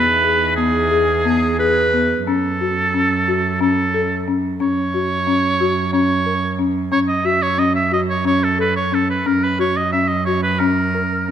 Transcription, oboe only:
Already playing: B4
0.56 G#4
2.27 A4
3.61 A4
4.61 C#5
5.93 C#5
6.92 C#5
7.08 D#5
7.26 E5
7.43 C#5
7.59 D#5
7.75 E5
7.93 D#5
8.10 C#5
8.26 C#5
8.43 A4
8.61 B4
8.76 C#5
8.94 A4
9.10 B4
9.27 A#4
9.44 B4
9.60 C#5
9.77 D#5
9.92 E5
10.08 D#5
10.25 C#5
10.43 B4
10.59 A#4

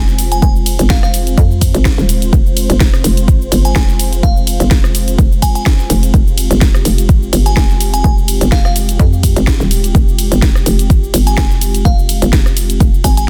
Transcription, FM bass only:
Already playing: F1
0.42 F1
0.79 G1
0.90 F1
1.38 F2
1.74 G#1
1.98 D#1
2.33 F1
2.70 G1
2.80 F1
3.04 F1
3.52 G1
3.76 F1
4.23 F1
4.60 G1
4.71 F1
5.18 F1
5.90 F1
6.14 F1
6.51 G1
6.61 F1
6.85 F1
7.33 G1
7.57 F1
8.04 F1
8.41 G1
8.52 F1
8.99 F2
9.36 G#1
9.60 D#1
9.95 F1
10.32 G1
10.42 F1
10.66 F1
11.14 G1
11.38 F1
11.85 F1
12.22 G1
12.33 F1
12.80 F1
13.04 G#1

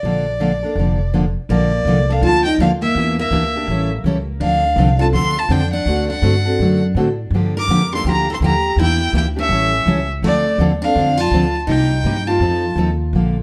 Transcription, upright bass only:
0.03 A#1
0.75 F1
1.49 A#1
1.85 C2
2.21 D2
2.58 D#2
2.95 E2
3.31 D2
3.67 A1
4.04 C#2
4.40 D2
4.76 C2
5.13 D2
5.49 F2
5.85 D2
6.22 G2
6.59 F#2
6.95 A2
7.30 G2
7.68 F2
8.04 D2
8.40 D#2
8.76 E2
9.13 D2
9.49 A1
9.86 C#2
10.22 D2
10.58 D#2
10.95 F2
11.31 D2
11.67 C2
12.04 G2
12.40 F2
12.76 D#2
13.13 A#1

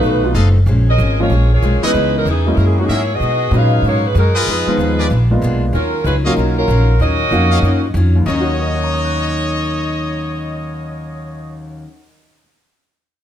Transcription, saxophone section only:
Already playing: A3 D#4 F#4 B4
0.89 C#4 G#4 A#4 D#5
1.21 A#3 F4 G#4 C#5
1.53 A#3 F4 G#4 C#5
1.86 G#3 D#4 E4 B4
2.17 F#3 B3 D#4 A#4
2.29 E3 B3 D#4 G#4
2.56 A#4
2.65 G#4
2.77 F#4
2.84 G#4
2.93 A#3 E4 G#4 C#5
3.14 B3 F#4 G#4 D#5
3.56 D#4 G#4 B4 F5
3.88 A#3 D#4 F#4 C#5
4.07 G#3 D#4 F#4 B4
4.18 G#3 D#4 F#4 A#4
4.50 G#3 D#4 F4 B4
5.74 F#3 C#4 F4 A#4
6.05 G#3 C#4 F4 B4
6.26 F#3 C#4 F4 A#4
6.58 F#3 C#4 F4 A#4
7.00 C#4 F#4 A#4 D#5

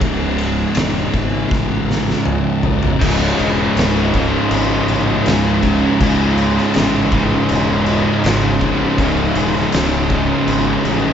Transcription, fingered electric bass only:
0.01 C#1
0.76 E1
1.13 G#1
1.52 A1
2.26 C#2
3.02 C#1
3.38 E1
3.76 C#1
4.51 G#1
4.88 A1
5.27 C#2
6.01 C#2
6.76 A1
7.50 E1
8.24 G#1
8.98 C#1
9.35 E1
9.73 C#1
10.47 G#1
10.85 A1

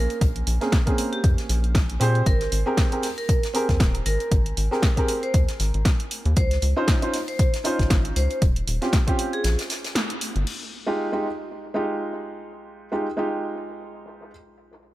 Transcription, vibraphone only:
Already playing: A#4
1.13 G4
2.26 A#4
3.18 A#4
4.06 A#4
5.23 C5
6.37 C5
7.28 C5
8.16 C5
9.33 G#4

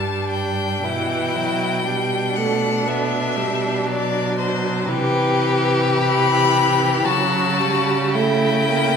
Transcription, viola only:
Already playing: G3
0.83 E3
1.35 F#3
1.86 G3
2.37 A3
2.87 B3
3.37 G3
3.86 F#3
4.88 E3
6.00 E3
7.05 F#3
7.59 G3
8.14 A3
8.70 A#3

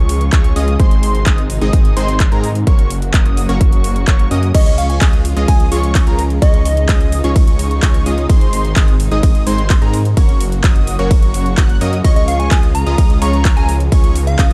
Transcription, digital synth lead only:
4.54 D#5
4.66 D#5
4.78 F5
4.90 G#5
5.48 G#5
6.42 D#5
6.66 D#5
12.04 D#5
12.16 D#5
12.28 F5
12.40 G#5
12.75 A#5
13.22 A#5
13.57 G#5
14.27 F5

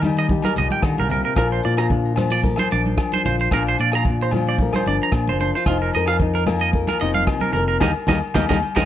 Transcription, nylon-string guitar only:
Already playing: D#3 A#3 A#4
0.04 G3 D#4
0.31 G4
0.57 A#2 A#3
0.83 D3
1.09 C3
1.36 A#2 F3 D4 F4 A#4
1.65 F4
1.91 D4
2.17 F3 D4
2.30 F4
2.44 A#4
2.71 D4, muted nylon-string guitar stroke
3.26 F4
3.52 A#2 D4
3.80 F4
4.06 D4
4.34 F3 F4
4.62 A#4
4.88 D4, muted nylon-string guitar stroke
5.42 D4
5.56 F4
5.68 F3 D#4
5.96 A#4
6.22 D#4
6.47 A#3 A#4
6.75 A#4
7.02 C3 D#4
7.57 A#4
7.82 G3 A#3 D#4
8.09 G3 A#3 D#4
8.36 G3 A#3 D#4
8.50 G3 A#3 D#4
8.78 G3 A#3 D#4

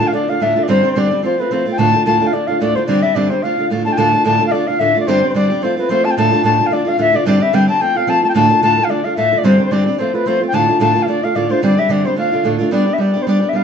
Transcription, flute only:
0.07 F5
0.14 D5
0.29 F5
0.42 E5
0.63 D5
0.69 C5
0.92 C5
0.98 D5
1.25 C5
1.40 B4
1.52 C5
1.72 G5
1.78 A5
2.06 A5
2.27 F5
2.33 D5
2.47 F5
2.61 D5
2.76 C5
2.87 D5
3.02 E5
3.15 D5
3.30 C5
3.43 F5
3.85 A5
3.89 G5 A5
3.98 A5
4.26 A5
4.47 F5
4.52 D5
4.67 F5
4.79 E5
5.00 D5
5.08 C5
5.30 C5
5.35 D5
5.63 C5
5.78 B4
5.90 C5
6.05 A5
6.11 G5
6.18 A5
6.45 A5
6.66 F5
6.73 D5
6.88 F5
7.00 E5
7.16 D5
7.28 D5
7.42 E5
7.54 G5
7.69 A5
7.81 G5
7.97 F5
8.09 A5
8.24 A5
8.29 G5
8.36 A5
8.63 A5
8.84 F5
8.90 D5
9.04 F5
9.17 E5
9.38 D5
9.45 C5
9.65 C5
9.72 D5
9.99 C5
10.14 B4
10.26 C5
10.48 G5
10.54 A5
10.81 A5
11.03 F5
11.08 D5
11.24 F5
11.36 D5
11.51 C5
11.63 D5
11.79 E5
11.91 D5
12.06 C5
12.18 F5
12.72 D5
12.93 E5
13.00 D5
13.22 C5
13.28 D5
13.49 E5
13.56 F5

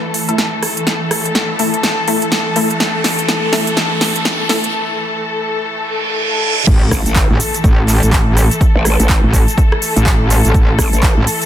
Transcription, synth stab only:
0.28 A3 E4 A4
1.59 A3 E4 A4
2.08 A3 E4 A4
2.56 A3 E4 A4
3.53 A3 E4 A4
4.49 A3 E4 A4

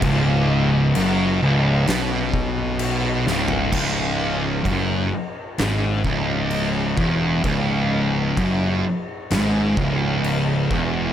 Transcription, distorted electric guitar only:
0.04 C#2
0.96 F#2
1.43 C#2
1.88 B2
3.27 C#2
3.73 C#2
4.65 F#2
5.59 G#2
6.05 C#2
6.97 E2
7.44 C#2
8.38 F#2
9.31 G#2
9.78 C#2
10.72 E2

